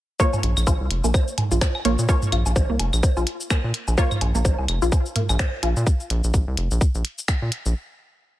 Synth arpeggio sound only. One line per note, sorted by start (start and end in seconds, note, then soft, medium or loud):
0.20 0.23 A#3 medium
0.67 0.72 F4 medium
1.04 1.06 A#3 medium
1.51 1.55 F4 medium
1.85 1.88 A#3 medium
2.32 2.37 F4 medium
2.70 2.72 A#3 medium
3.17 3.21 F4 medium
3.50 3.53 A#3 medium
3.98 4.03 F4 medium
4.35 4.37 A#3 medium
4.82 4.86 F4 medium
5.16 5.19 A#3 medium
5.63 5.68 F4 medium